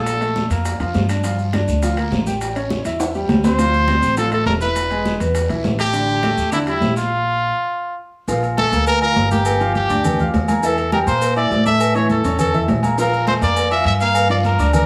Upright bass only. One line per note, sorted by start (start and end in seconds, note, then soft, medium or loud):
0.00 0.45 A#1 medium
0.50 0.77 F2 medium
0.79 0.93 F2 medium
0.94 1.62 G2 loud
1.67 2.09 D2 medium
2.11 2.79 A1 medium
2.85 3.26 E2 medium
3.29 3.97 D2 medium
4.02 4.43 A1 medium
4.46 5.14 E1 loud
5.20 5.47 E2 medium
5.49 5.63 B1 medium
5.64 6.32 A1 loud
6.37 6.78 E2 medium
6.81 7.49 A#1 medium
8.28 8.69 A#1 medium
8.72 9.13 D2 medium
9.16 9.84 G1 loud
9.90 10.31 D2 medium
10.34 11.02 E2 loud
11.07 11.48 A#2 loud
11.50 12.19 A2 loud
12.24 12.65 E2 medium
12.68 13.36 A#1 loud
13.41 13.82 F2 medium
13.85 14.53 G2 loud
14.58 14.86 D2 medium